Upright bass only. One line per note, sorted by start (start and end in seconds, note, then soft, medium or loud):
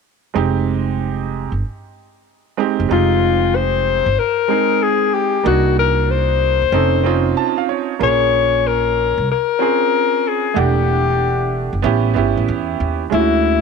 0.36 1.48 F1 medium
1.52 1.62 G1 medium
2.80 2.89 F1 medium
2.91 4.03 F1 loud
4.06 4.16 G1 medium
5.46 6.58 C2 loud
6.62 6.72 D#2 medium
6.72 7.32 F1 loud
8.01 9.13 A#1 medium
9.18 9.27 C2 medium
10.56 11.69 E1 loud
11.73 11.83 F#1 medium
11.84 12.12 A1 loud
12.16 12.35 G1 medium
12.37 12.47 A1 medium
12.48 12.77 E2 medium
12.80 13.09 D#2 medium
13.12 13.61 D2 loud